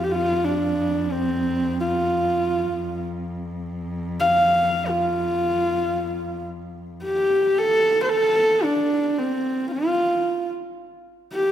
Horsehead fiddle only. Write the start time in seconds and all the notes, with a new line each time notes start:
0.04 G4
0.12 F4
0.45 D4
1.13 C4
1.80 F4
4.20 F5
4.89 F4
7.04 G4
7.58 A4
8.03 C5
8.09 A4
8.64 D4
9.19 C4
9.72 F4
11.33 G4